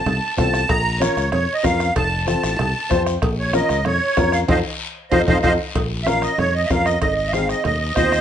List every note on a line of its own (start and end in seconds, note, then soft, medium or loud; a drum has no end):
0.00 0.34 A5 loud
0.06 0.19 C2 loud
0.06 bombo rim medium
0.06 cowbell medium
0.06 high conga soft
0.06 low conga medium
0.06 long guiro medium
0.37 0.64 C2 medium
0.37 0.60 C4 medium
0.37 0.60 F4 medium
0.37 0.60 A4 medium
0.37 0.70 A5 loud
0.37 bombo low medium
0.37 bombo rim medium
0.37 high conga medium
0.37 low conga medium
0.37 low timbale medium
0.37 short guiro medium
0.54 bombo rim medium
0.54 short guiro medium
0.69 1.07 A#1 loud
0.69 1.02 A#5 loud
0.69 bombo low medium
0.69 bombo rim medium
0.69 cowbell loud
0.69 long guiro medium
1.00 1.23 C#4 medium
1.00 1.23 F4 medium
1.00 1.23 A#4 medium
1.00 1.30 C#5 medium
1.00 bombo rim loud
1.00 high conga medium
1.00 short guiro medium
1.17 1.30 C#2 medium
1.17 bombo rim medium
1.17 short guiro medium
1.32 1.45 F2 loud
1.32 1.54 C#5 medium
1.32 bombo rim medium
1.32 cowbell medium
1.32 high conga soft
1.32 low conga medium
1.32 long guiro medium
1.54 1.65 D#5 medium
1.63 1.90 F2 medium
1.63 1.86 C#4 medium
1.63 1.86 F4 medium
1.63 1.86 A#4 medium
1.63 1.94 F5 medium
1.63 bombo low medium
1.63 bombo rim medium
1.63 high conga medium
1.63 low timbale medium
1.63 short guiro medium
1.80 bombo rim medium
1.80 short guiro medium
1.96 2.34 F1 loud
1.96 2.26 A5 loud
1.96 bombo low medium
1.96 bombo rim medium
1.96 cowbell loud
1.96 long guiro medium
2.26 2.49 C4 medium
2.26 2.49 F4 medium
2.26 2.49 A4 medium
2.26 3.03 A5 medium
2.26 bombo rim medium
2.26 high conga medium
2.26 short guiro medium
2.43 2.56 A1 medium
2.43 bombo rim medium
2.43 short guiro medium
2.59 2.72 C2 medium
2.59 bombo rim medium
2.59 cowbell medium
2.59 high conga soft
2.59 low conga medium
2.59 long guiro medium
2.90 3.16 F2 medium
2.90 3.12 C4 medium
2.90 3.13 F4 medium
2.90 3.13 C5 loud
2.90 bombo low medium
2.90 bombo rim medium
2.90 high conga medium
2.90 low timbale medium
2.90 short guiro medium
3.06 bombo rim medium
3.06 short guiro medium
3.22 3.61 A#1 loud
3.22 bombo low medium
3.22 bombo rim medium
3.22 cowbell loud
3.22 long guiro medium
3.40 3.54 C#5 medium
3.53 3.76 C#4 medium
3.53 3.76 F4 medium
3.53 3.77 A#4 medium
3.53 3.84 D#5 medium
3.53 bombo rim loud
3.53 high conga medium
3.53 short guiro medium
3.69 3.83 C#2 medium
3.69 bombo rim medium
3.69 short guiro medium
3.85 3.98 F2 medium
3.85 4.35 C#5 loud
3.85 bombo rim medium
3.85 cowbell medium
3.85 high conga soft
3.85 low conga medium
3.85 long guiro medium
4.17 4.43 F2 loud
4.17 4.39 C#4 medium
4.17 4.40 F4 medium
4.17 4.40 A#4 medium
4.17 bombo low medium
4.17 bombo rim medium
4.17 high conga medium
4.17 low timbale medium
4.17 short guiro medium
4.32 4.40 F5 loud
4.32 bombo rim medium
4.32 short guiro medium
4.48 4.61 F2 loud
4.48 4.59 D#4 medium
4.48 4.59 F4 medium
4.48 4.59 A4 medium
4.48 4.59 C5 medium
4.48 4.59 D#5 loud
4.48 4.59 F5 medium
4.48 bombo low loud
4.48 high conga loud
4.48 high timbale loud
4.48 long guiro loud
5.11 5.24 F2 medium
5.11 5.22 D#4 loud
5.11 5.22 F4 loud
5.11 5.22 A4 medium
5.11 5.22 C5 medium
5.11 5.22 D#5 loud
5.11 5.22 F5 loud
5.11 bombo low medium
5.11 high conga medium
5.11 high timbale loud
5.11 long guiro loud
5.27 5.40 F2 loud
5.27 5.38 D#4 loud
5.27 5.38 F4 loud
5.27 5.38 A4 medium
5.27 5.38 C5 medium
5.27 5.38 D#5 loud
5.27 5.38 F5 medium
5.27 bombo low loud
5.27 high conga loud
5.27 high timbale medium
5.27 long guiro loud
5.43 5.56 F2 medium
5.43 5.54 D#4 loud
5.43 5.54 F4 medium
5.43 5.54 A4 loud
5.43 5.53 C5 loud
5.43 5.53 D#5 loud
5.43 5.53 F5 medium
5.43 bombo low medium
5.43 high conga medium
5.43 high timbale loud
5.43 long guiro medium
5.75 6.26 A#1 medium
5.75 bombo low medium
5.75 bombo rim medium
5.75 cowbell loud
5.75 high conga soft
5.75 low conga medium
5.75 long guiro medium
6.03 6.29 C#4 medium
6.03 6.29 F4 medium
6.03 6.29 A#4 medium
6.03 6.06 E5 medium
6.03 bombo rim medium
6.03 high conga medium
6.03 short guiro medium
6.07 6.23 F5 medium
6.22 6.38 D#5 medium
6.22 bombo rim medium
6.22 short guiro medium
6.38 6.64 F2 medium
6.38 6.54 C#5 loud
6.38 bombo rim medium
6.38 cowbell medium
6.38 high conga soft
6.38 low conga medium
6.38 long guiro medium
6.54 6.70 D#5 medium
6.65 6.68 E5 medium
6.70 6.96 F2 medium
6.70 6.93 C#4 medium
6.70 6.93 F4 medium
6.70 6.93 A#4 medium
6.70 6.86 F5 medium
6.70 bombo low medium
6.70 bombo rim medium
6.70 high conga medium
6.70 low conga medium
6.70 low timbale medium
6.70 short guiro medium
6.85 6.99 D#5 medium
6.85 bombo rim medium
6.85 short guiro medium
7.01 7.53 G#1 medium
7.01 7.14 D#5 medium
7.01 bombo low medium
7.01 bombo rim medium
7.01 cowbell loud
7.01 high conga soft
7.01 low conga medium
7.01 long guiro medium
7.16 7.32 D#5 medium
7.27 7.30 E5 medium
7.32 7.56 C4 medium
7.32 7.56 D#4 medium
7.32 7.56 G#4 medium
7.32 7.48 F5 medium
7.32 bombo rim medium
7.32 high conga medium
7.32 short guiro medium
7.49 7.63 D#5 medium
7.49 bombo rim medium
7.49 short guiro medium
7.64 7.90 D#2 medium
7.64 7.79 D#5 medium
7.64 bombo rim medium
7.64 cowbell medium
7.64 high conga soft
7.64 low conga medium
7.64 long guiro medium
7.80 7.94 D#5 medium
7.95 8.21 D#2 medium
7.95 8.19 C4 medium
7.95 8.19 D#4 medium
7.95 8.20 F4 medium
7.95 8.21 C5 medium
7.95 8.21 D#5 loud
7.95 bombo low medium
7.95 bombo rim medium
7.95 high conga medium
7.95 low conga medium
7.95 low timbale medium
7.95 short guiro medium
8.12 bombo rim medium
8.12 short guiro medium